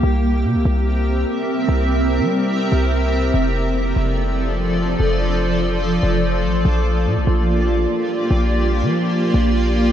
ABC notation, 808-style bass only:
X:1
M:4/4
L:1/16
Q:1/4=145
K:Bblyd
V:1 name="808-style bass" clef=bass
C,,4 C, C,, C,,6 z4 | C,,4- C,, G,4- G, C,,6 | F,,,6 F,,,8- F,,,2 | F,,,8- F,,,2 F,,,4 A,,,2 |
B,,,4 B,, B,,, B,,,6 z4 | B,,,4- B,,, F,4- F, B,,,6 |]